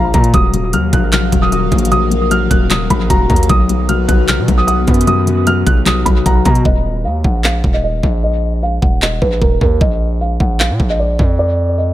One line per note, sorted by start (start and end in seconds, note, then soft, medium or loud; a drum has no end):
0.00 0.13 A#1 loud
0.00 0.36 F3 loud
0.00 0.14 A#3 medium
0.00 0.35 F5 loud
0.14 0.33 A#2 loud
0.14 0.34 A#3 medium
0.14 0.30 A#5 medium
0.14 kick loud
0.14 closed hi-hat medium
0.14 open hi-hat medium
0.24 closed hi-hat medium
0.34 0.75 D#1 loud
0.34 6.61 D#3 medium
0.34 3.46 F#3 medium
0.34 0.52 F#3 loud
0.34 3.46 A#4 medium
0.34 3.46 F5 medium
0.34 0.71 D#6 loud
0.34 kick loud
0.34 closed hi-hat medium
0.54 0.72 F#3 medium
0.54 closed hi-hat medium
0.73 0.92 D#2 loud
0.73 0.92 F#3 medium
0.73 0.89 F6 medium
0.73 closed hi-hat medium
0.93 1.31 A#1 loud
0.93 1.11 F#3 medium
0.93 1.09 F#6 medium
0.93 kick loud
0.93 closed hi-hat medium
1.12 1.31 F#3 medium
1.12 1.40 F6 medium
1.12 clap loud
1.12 closed hi-hat medium
1.32 1.70 D#1 loud
1.32 1.90 F#3 medium
1.32 kick medium
1.32 closed hi-hat medium
1.42 1.50 D#6 medium
1.52 2.51 F#4 medium
1.52 1.89 D#6 medium
1.52 closed hi-hat medium
1.72 2.48 A#1 loud
1.72 2.71 A#3 medium
1.72 kick loud
1.72 closed hi-hat soft
1.72 open hi-hat medium
1.78 closed hi-hat medium
1.85 closed hi-hat medium
1.92 2.09 F#3 loud
1.92 2.29 D#6 loud
1.92 closed hi-hat medium
2.11 2.29 F#3 medium
2.11 closed hi-hat medium
2.31 2.49 F#3 medium
2.31 2.47 F6 medium
2.31 closed hi-hat medium
2.50 2.89 D#1 loud
2.50 2.69 F#3 medium
2.50 2.66 F#6 medium
2.50 kick loud
2.50 closed hi-hat medium
2.70 2.88 F#3 loud
2.70 2.86 D#6 medium
2.70 clap loud
2.70 closed hi-hat medium
2.90 3.09 A#1 loud
2.90 3.48 F#3 medium
2.90 3.06 B5 medium
2.90 kick medium
2.90 closed hi-hat medium
3.10 3.29 D#1 loud
3.10 3.49 F#4 loud
3.10 3.26 A#5 loud
3.10 kick loud
3.10 closed hi-hat medium
3.30 3.49 D#2 loud
3.30 3.49 A#3 medium
3.30 3.45 A#5 medium
3.30 kick loud
3.30 closed hi-hat soft
3.36 closed hi-hat medium
3.43 closed hi-hat medium
3.49 4.06 B1 loud
3.49 3.68 F#3 loud
3.49 6.62 B3 medium
3.49 6.62 F#4 medium
3.49 6.62 B4 medium
3.49 3.87 D#6 loud
3.49 kick loud
3.49 closed hi-hat medium
3.69 3.87 F#3 medium
3.69 closed hi-hat medium
3.89 4.07 F#3 medium
3.89 4.04 F6 medium
3.89 closed hi-hat medium
4.08 4.40 B1 loud
4.08 4.27 F#3 medium
4.08 4.24 F#6 medium
4.08 kick loud
4.08 closed hi-hat medium
4.28 4.47 F#3 medium
4.28 4.56 F6 medium
4.28 clap loud
4.28 closed hi-hat loud
4.38 4.48 B2 loud
4.48 4.86 B1 loud
4.48 5.06 F#3 medium
4.48 kick medium
4.48 closed hi-hat medium
4.58 4.66 D#6 medium
4.67 5.66 F#5 medium
4.67 5.05 D#6 medium
4.67 closed hi-hat medium
4.87 5.63 F#2 loud
4.87 5.86 B3 medium
4.87 kick loud
4.87 closed hi-hat soft
4.87 open hi-hat medium
4.94 closed hi-hat medium
5.01 closed hi-hat medium
5.07 5.25 F#3 medium
5.07 5.44 D#6 loud
5.07 closed hi-hat medium
5.27 5.45 F#3 medium
5.27 closed hi-hat medium
5.47 5.65 F#3 medium
5.47 5.63 F6 loud
5.47 closed hi-hat medium
5.66 6.04 B1 loud
5.66 5.84 F#3 medium
5.66 5.82 F#6 medium
5.66 kick loud
5.66 closed hi-hat medium
5.86 6.04 F#3 medium
5.86 6.02 D#6 medium
5.86 clap loud
5.86 closed hi-hat medium
6.06 6.25 B1 loud
6.06 6.65 F#3 medium
6.06 6.21 B5 medium
6.06 kick medium
6.06 closed hi-hat medium
6.26 6.45 B1 loud
6.26 6.65 F#5 loud
6.26 6.41 A#5 medium
6.26 kick loud
6.26 closed hi-hat medium
6.45 6.64 B2 loud
6.45 6.65 B3 medium
6.45 6.61 A#5 medium
6.45 kick loud
6.45 closed hi-hat medium
6.45 open hi-hat medium
6.55 closed hi-hat medium
6.65 7.06 D#1 loud
6.65 7.02 D#5 loud
6.65 kick loud
7.05 7.23 D#2 loud
7.05 7.20 F5 medium
7.24 7.62 A#1 loud
7.24 7.40 F#5 medium
7.24 kick loud
7.44 7.72 F5 medium
7.44 clap loud
7.64 8.02 D#1 loud
7.64 kick medium
7.74 7.82 D#5 medium
7.84 8.21 D#5 medium
8.03 8.79 A#1 loud
8.03 kick loud
8.24 8.60 D#5 medium
8.63 8.78 F5 medium
8.82 9.20 D#1 loud
8.82 8.98 F#5 medium
8.82 kick loud
9.02 9.18 D#5 medium
9.02 clap loud
9.22 9.41 A#1 loud
9.22 9.37 B4 medium
9.22 kick medium
9.41 9.61 D#1 loud
9.41 9.57 A#4 medium
9.41 kick loud
9.61 9.80 D#2 loud
9.61 9.77 A#4 medium
9.61 kick loud
9.81 10.38 A#1 loud
9.81 10.18 D#5 medium
9.81 kick loud
10.21 10.36 F5 medium
10.40 10.71 A#1 loud
10.40 10.56 F#5 medium
10.40 kick loud
10.60 10.88 F5 medium
10.60 clap loud
10.70 10.79 A#2 loud
10.80 11.18 A#1 loud
10.80 kick medium
10.90 10.98 D#5 medium
10.99 11.37 D5 medium
11.19 11.94 F2 loud
11.19 kick loud
11.39 11.76 D5 loud
11.78 11.94 D#5 medium